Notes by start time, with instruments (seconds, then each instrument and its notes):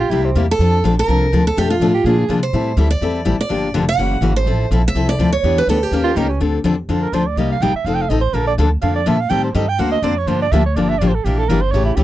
Already playing: steel-string acoustic guitar G4
0.00 soprano saxophone F4
0.10 upright bass C2, steel-string acoustic guitar C3 G3 A#3 E4 G4, soprano saxophone E4
0.25 soprano saxophone C4
0.35 upright bass E2, steel-string acoustic guitar C3 G3 A#3 E4 G4
0.51 steel-string acoustic guitar A4
0.59 upright bass F2, steel-string acoustic guitar F3 C4 D4 A4
0.84 upright bass A#1, steel-string acoustic guitar F3 C4 D4 A4
0.99 steel-string acoustic guitar A#4
1.08 upright bass C2, steel-string acoustic guitar F3 C4 D4 A4
1.32 upright bass D2, steel-string acoustic guitar F3 C4 D4 A4
1.47 steel-string acoustic guitar A4
1.57 upright bass F2, steel-string acoustic guitar B2 F3 A3 D4 G4 A4
1.70 steel-string acoustic guitar F4
1.80 upright bass A2, steel-string acoustic guitar B2 F3 A3 D4 A4
1.94 soprano saxophone G4
2.04 upright bass A#2, steel-string acoustic guitar D3 F3 A#3 D4 G#4, soprano saxophone G#4
2.29 upright bass C3, steel-string acoustic guitar D3 F3 A#3 D4 G#4
2.43 steel-string acoustic guitar C5
2.53 upright bass A2, steel-string acoustic guitar E3 G3 C4 E4 A4
2.76 upright bass D2, steel-string acoustic guitar E3 G3 C4 E4 A4
2.90 steel-string acoustic guitar D5
3.01 upright bass E2, steel-string acoustic guitar E3 G3 C4 E4 A4
3.25 upright bass A1, steel-string acoustic guitar E3 G3 C4 E4 A4
3.39 steel-string acoustic guitar D5, muted upright bass stroke
3.49 upright bass G1, steel-string acoustic guitar D3 F3 A#3 D4 G4
3.74 upright bass F1, steel-string acoustic guitar D3 F3 A#3 D4 G4
3.89 steel-string acoustic guitar F#5
3.98 upright bass F#1, steel-string acoustic guitar C#3 E3 A#3 C#4 F#4
4.21 upright bass G#1, steel-string acoustic guitar C#3 E3 A#3 C#4 F#4
4.36 steel-string acoustic guitar C5
4.46 upright bass A1, steel-string acoustic guitar F3 C4 E4 A4
4.71 upright bass A#1, steel-string acoustic guitar F3 C4 E4 A4
4.88 steel-string acoustic guitar E5
4.95 upright bass C2, steel-string acoustic guitar F3 C4 E4 A4
5.09 steel-string acoustic guitar D5
5.19 upright bass D2, steel-string acoustic guitar F3 C4 E4 A4
5.32 steel-string acoustic guitar C#5
5.43 upright bass E2, steel-string acoustic guitar E3 B3 D4 G4
5.58 steel-string acoustic guitar B4
5.67 upright bass D2, steel-string acoustic guitar E3 B3 D4 G4 A4
5.83 steel-string acoustic guitar G4
5.91 upright bass D#2, steel-string acoustic guitar D#3 A#3 C#4 G4 A#4
6.04 soprano saxophone F4
6.16 upright bass C#2, steel-string acoustic guitar D#3 A#3 C#4 G4 A#4, soprano saxophone D#4
6.30 soprano saxophone C#4
6.40 upright bass D2, steel-string acoustic guitar D3 F3 C4 D4 A4
6.64 upright bass E2, steel-string acoustic guitar D3 F3 C4 D4 A4
6.89 upright bass F2, steel-string acoustic guitar D3 F3 C4 D4 A4, soprano saxophone A4
7.02 soprano saxophone A#4
7.12 upright bass D2, steel-string acoustic guitar D3 F3 C4 D4 A4, soprano saxophone C5
7.27 soprano saxophone D5
7.36 upright bass C2, steel-string acoustic guitar C3 G3 A#3 D#4 G4, soprano saxophone D#5
7.52 soprano saxophone F5
7.60 upright bass A#1, steel-string acoustic guitar C3 G3 A#3 D#4 G4, soprano saxophone G5
7.74 soprano saxophone E5, muted upright bass stroke
7.84 upright bass F1, steel-string acoustic guitar F3 C4 D#4 A4, soprano saxophone F5
7.95 soprano saxophone G5
8.02 soprano saxophone F5
8.09 upright bass A1, steel-string acoustic guitar F3 C4 D#4 A4, soprano saxophone D#5
8.21 soprano saxophone C5
8.33 upright bass A#1, steel-string acoustic guitar D3 F3 A#3 D4 A4, soprano saxophone A#4
8.47 soprano saxophone D5
8.58 upright bass D2, steel-string acoustic guitar D3 F3 A#3 D4 A4
8.82 upright bass F2, steel-string acoustic guitar D3 F3 A#3 D4 A4, soprano saxophone F5
8.96 soprano saxophone D5
9.06 upright bass A#2, steel-string acoustic guitar D3 F3 A#3 D4 A4, soprano saxophone E5
9.21 soprano saxophone F5
9.30 upright bass A2, steel-string acoustic guitar D#3 G3 C4 G4 A4, soprano saxophone G5
9.44 soprano saxophone C5
9.55 upright bass G2, steel-string acoustic guitar D#3 G3 C4 G4 A4, soprano saxophone D#5
9.69 soprano saxophone G5
9.78 upright bass D2, steel-string acoustic guitar D3 A#3 C4 F#4 C5, soprano saxophone F#5
9.92 soprano saxophone D#5
10.02 upright bass F2, steel-string acoustic guitar D3 A#3 C4 F#4 C5, soprano saxophone D5
10.18 soprano saxophone C#5
10.27 upright bass G2, steel-string acoustic guitar D3 F3 A#3 D4 G4, soprano saxophone C5
10.42 soprano saxophone D5
10.52 upright bass D2, steel-string acoustic guitar D3 F3 A#3 D4 G4, soprano saxophone E5
10.66 soprano saxophone C#5
10.76 upright bass G1, steel-string acoustic guitar D3 F3 A#3 D4 G4, soprano saxophone D5
10.89 soprano saxophone E5
10.98 upright bass A1, steel-string acoustic guitar D3 F3 A#3 D4, soprano saxophone D5
11.03 steel-string acoustic guitar G4
11.08 soprano saxophone C5
11.15 soprano saxophone A4
11.24 upright bass A#1, steel-string acoustic guitar E3 A#3 D4 G4, soprano saxophone G4
11.38 soprano saxophone A4
11.49 upright bass G1, steel-string acoustic guitar E3 A#3 D4 G4, soprano saxophone A#4
11.61 soprano saxophone C5
11.71 upright bass A1, steel-string acoustic guitar C#3 E3 A3 C#4 G4, soprano saxophone C#5
11.85 soprano saxophone E4
11.96 upright bass C#2, steel-string acoustic guitar C#3 E3 A3 C#4 G4, soprano saxophone G4